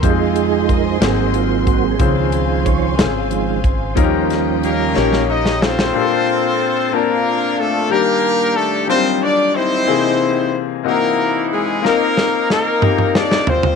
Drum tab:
HH |x-x-x-x-x-x-|x-x-x-x-x-x-|x-x-x-------|------------|
SD |------o-----|------o-----|--o---oo-ooo|------------|
T2 |------------|------------|------------|------------|
FT |------------|------------|------------|------------|
BD |o---o-----o-|o---o-----o-|o-----------|------------|

HH |------------|------------|------------|
SD |------------|------------|o-o-o---oo--|
T2 |------------|------------|------oo----|
FT |------------|------------|----------oo|
BD |------------|------------|------------|